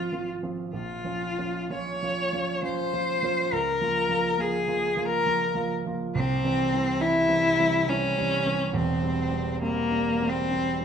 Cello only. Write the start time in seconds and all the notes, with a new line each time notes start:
Already playing: F4
0.75 F4
1.73 C#5
2.64 C5
3.53 A#4
4.40 G#4
5.05 A#4
6.15 C4
7.01 E4
7.89 C#4
8.75 C4
9.62 A#3
10.30 C4